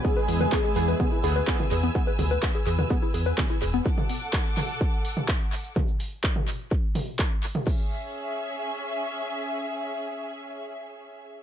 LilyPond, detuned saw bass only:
\new Staff \with { instrumentName = "Detuned saw bass" } { \clef bass \time 4/4 \key cis \phrygian \tempo 4 = 126 r8 e,8 r8 e,8 r8 d,8 r8 e,8 | r8 d,8 r8 e,8 r8 e,8 r8 e,,8 | r1 | r1 |
r1 | r1 | }